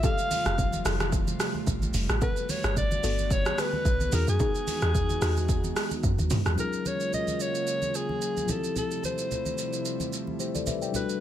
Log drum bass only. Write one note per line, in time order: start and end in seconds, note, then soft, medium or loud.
0.46 0.82 F1 loud
0.85 1.36 F1 loud
1.67 1.92 A1 medium
1.94 2.08 F1 medium
2.09 2.21 A1 loud
2.64 3.00 G1 medium
3.04 3.54 G1 loud
3.85 4.10 B1 loud
4.13 4.26 E2 loud
4.28 4.39 F#2 medium
4.82 5.18 E2 loud
5.22 5.72 E2 loud
6.04 6.17 F#2 loud
6.19 6.30 D#2 medium
6.46 6.57 E2 medium